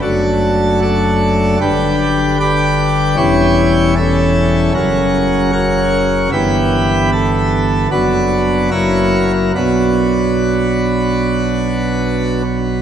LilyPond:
<<
  \new Staff \with { instrumentName = "Pipe organ" } { \time 4/4 \key b \minor \tempo 4 = 76 <d' fis' a'>4 <d' fis' a'>4 <d' g' b'>4 <g' b' d''>4 | <e' g' cis''>4 <cis' e' a'>4 <cis' fis' ais'>4 <fis' ais' cis''>4 | <e' g' b'>4 a'4 <d' fis' b'>4 <fis' ais' cis''>8. ais'16 | <d' fis' b'>2.~ <d' fis' b'>8 r8 | }
  \new Staff \with { instrumentName = "Pipe organ" } { \clef bass \time 4/4 \key b \minor <fis,, fis, fis a>2 <g,, g, d g>2 | <e,, e, e g cis'>2 <fis,, fis, cis fis>2 | <g,, g, e b>2 <fis,, fis, fis b>4 <fis,, fis, fis ais e'>4 | <b,, b, fis b>1 | }
>>